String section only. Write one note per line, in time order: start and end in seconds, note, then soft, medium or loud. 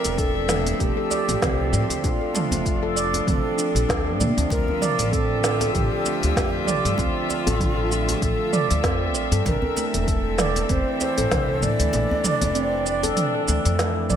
0.00 9.42 F3 medium
0.00 2.01 C4 medium
0.00 2.00 E5 medium
2.04 4.49 D4 medium
4.50 9.42 D3 medium
4.50 9.42 F4 medium
4.50 11.89 E5 medium
9.46 14.16 E3 medium
9.46 11.91 C4 medium
11.93 14.16 D4 medium